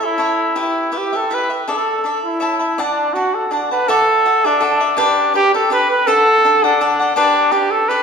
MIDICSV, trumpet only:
0, 0, Header, 1, 2, 480
1, 0, Start_track
1, 0, Key_signature, 2, "major"
1, 0, Tempo, 369004
1, 728, Time_signature, 3, 2, 24, 8
1, 6008, Tempo, 364078
1, 10503, End_track
2, 0, Start_track
2, 0, Title_t, "Trumpet"
2, 0, Program_c, 0, 56
2, 67, Note_on_c, 0, 64, 76
2, 753, Note_off_c, 0, 64, 0
2, 789, Note_on_c, 0, 64, 63
2, 1265, Note_on_c, 0, 67, 65
2, 1285, Note_off_c, 0, 64, 0
2, 1511, Note_on_c, 0, 69, 74
2, 1530, Note_off_c, 0, 67, 0
2, 1745, Note_on_c, 0, 71, 72
2, 1765, Note_off_c, 0, 69, 0
2, 1965, Note_off_c, 0, 71, 0
2, 2197, Note_on_c, 0, 69, 74
2, 2855, Note_off_c, 0, 69, 0
2, 2930, Note_on_c, 0, 64, 66
2, 3651, Note_on_c, 0, 62, 74
2, 3670, Note_off_c, 0, 64, 0
2, 4079, Note_on_c, 0, 66, 73
2, 4098, Note_off_c, 0, 62, 0
2, 4353, Note_on_c, 0, 69, 64
2, 4373, Note_off_c, 0, 66, 0
2, 4579, Note_on_c, 0, 62, 58
2, 4598, Note_off_c, 0, 69, 0
2, 4825, Note_off_c, 0, 62, 0
2, 4834, Note_on_c, 0, 71, 87
2, 5053, Note_on_c, 0, 69, 108
2, 5073, Note_off_c, 0, 71, 0
2, 5802, Note_on_c, 0, 62, 88
2, 5821, Note_off_c, 0, 69, 0
2, 6499, Note_off_c, 0, 62, 0
2, 6507, Note_on_c, 0, 62, 76
2, 6946, Note_off_c, 0, 62, 0
2, 6976, Note_on_c, 0, 67, 99
2, 7205, Note_off_c, 0, 67, 0
2, 7232, Note_on_c, 0, 69, 80
2, 7441, Note_off_c, 0, 69, 0
2, 7461, Note_on_c, 0, 71, 98
2, 7688, Note_off_c, 0, 71, 0
2, 7711, Note_on_c, 0, 71, 99
2, 7923, Note_on_c, 0, 69, 115
2, 7943, Note_off_c, 0, 71, 0
2, 8671, Note_on_c, 0, 62, 86
2, 8691, Note_off_c, 0, 69, 0
2, 9352, Note_off_c, 0, 62, 0
2, 9360, Note_on_c, 0, 62, 86
2, 9834, Note_on_c, 0, 67, 78
2, 9854, Note_off_c, 0, 62, 0
2, 10083, Note_on_c, 0, 69, 77
2, 10102, Note_off_c, 0, 67, 0
2, 10320, Note_on_c, 0, 71, 84
2, 10340, Note_off_c, 0, 69, 0
2, 10503, Note_off_c, 0, 71, 0
2, 10503, End_track
0, 0, End_of_file